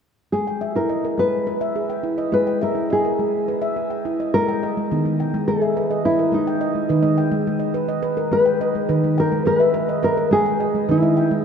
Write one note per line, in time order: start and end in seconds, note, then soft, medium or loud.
0.32 1.16 G#3 medium
0.32 0.76 G#4 medium
0.32 0.77 G#4 soft
0.47 0.91 G5 soft
0.61 1.05 E5 soft
0.76 1.05 E4 medium
0.76 1.16 A#4 medium
0.89 1.33 D#5 soft
1.05 1.48 A#4 soft
1.18 1.47 G#3 medium
1.18 2.32 B4 medium
1.47 1.91 B4 soft
1.61 1.90 E5 medium
1.76 2.19 G#4 soft
1.90 2.33 G5 soft
2.03 2.33 E4 medium
2.18 2.62 D#5 soft
2.32 2.62 G#3 medium
2.32 2.76 G#4 medium
2.32 2.62 B4 medium
2.47 2.91 G5 soft
2.61 2.92 A#4 medium
2.61 3.05 E5 soft
2.75 3.04 E4 soft
2.90 4.02 G#4 medium
2.90 3.34 D#5 soft
3.05 3.48 A#4 soft
3.19 3.48 G#3 medium
3.48 3.91 B4 soft
3.62 3.91 E5 medium
3.76 4.19 G#4 soft
3.90 4.34 G5 soft
4.05 4.34 E4 medium
4.20 4.48 D#5 soft
4.34 4.58 G#3 medium
4.34 5.47 A#4 medium
4.48 4.91 G5 soft
4.63 5.06 D#5 soft
4.77 5.04 G#3 medium
4.91 5.40 D#3 medium
4.91 5.34 B3 medium
5.06 5.33 G#3 medium
5.20 5.62 G5 soft
5.34 5.47 G#3 medium
5.48 5.72 G#3 medium
5.48 6.05 G#4 medium
5.48 5.91 G#4 soft
5.62 6.05 E5 soft
5.77 6.04 B4 medium
5.91 6.33 D#5 soft
6.05 6.34 E4 medium
6.05 6.34 B4 medium
6.19 6.62 A#4 soft
6.32 6.61 G#3 medium
6.32 8.00 D#4 medium
6.47 6.90 G5 soft
6.61 7.01 D#5 soft
6.75 7.02 G#3 medium
6.89 7.39 D#3 medium
6.89 7.32 B4 medium
7.03 7.30 G#3 medium
7.03 7.46 D#5 soft
7.18 7.61 G5 soft
7.32 7.46 G#3 medium
7.47 7.71 G#3 medium
7.60 7.87 D#5 soft
7.74 8.01 B4 medium
7.89 8.32 D#5 medium
8.03 8.32 B4 medium
8.17 8.60 A#4 medium
8.32 8.61 G#3 medium
8.32 9.14 B4 medium
8.46 8.89 G5 soft
8.61 9.04 D#5 medium
8.75 9.03 G#3 medium
8.89 9.38 D#3 medium
8.89 9.32 B4 medium
9.04 9.31 G#3 medium
9.18 9.46 A#4 medium
9.18 9.60 G5 medium
9.32 9.45 G#3 medium
9.45 9.71 G#3 medium
9.45 9.89 G#4 soft
9.45 9.58 A#4 medium
9.58 10.04 B4 medium
9.58 10.03 E5 medium
9.74 10.02 B4 medium
9.89 10.32 D#5 medium
10.03 10.32 A#4 medium
10.03 10.31 B4 medium
10.17 10.60 A#4 soft
10.31 10.56 G#3 medium
10.31 10.91 G#4 medium
10.46 10.89 G5 soft
10.60 11.01 D#5 medium
10.75 11.01 G#3 medium
10.89 11.37 D#3 medium
10.89 11.32 E4 medium
10.89 11.31 B4 medium
11.03 11.30 G#3 medium
11.03 11.45 D#5 soft
11.17 11.45 G5 soft
11.31 11.45 G#3 medium
11.31 11.45 D#4 medium